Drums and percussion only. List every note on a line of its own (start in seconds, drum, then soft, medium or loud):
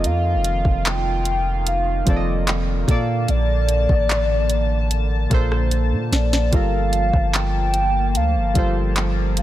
0.04 closed hi-hat medium
0.44 closed hi-hat medium
0.65 kick medium
0.85 clap loud
0.85 closed hi-hat medium
1.25 closed hi-hat medium
1.67 closed hi-hat medium
2.07 kick medium
2.07 closed hi-hat medium
2.47 clap loud
2.47 closed hi-hat medium
2.88 kick loud
2.88 closed hi-hat medium
3.28 closed hi-hat medium
3.69 closed hi-hat medium
3.89 kick medium
4.10 clap loud
4.10 closed hi-hat medium
4.49 closed hi-hat medium
4.91 closed hi-hat medium
5.31 kick medium
5.31 closed hi-hat medium
5.52 cross-stick medium
5.71 closed hi-hat medium
6.13 snare loud
6.13 closed hi-hat medium
6.33 snare medium
6.53 kick loud
6.53 closed hi-hat medium
6.93 closed hi-hat medium
7.13 kick medium
7.34 clap loud
7.34 closed hi-hat medium
7.74 closed hi-hat medium
8.15 closed hi-hat medium
8.55 kick medium
8.55 closed hi-hat medium
8.96 clap loud
8.96 closed hi-hat medium
9.37 closed hi-hat medium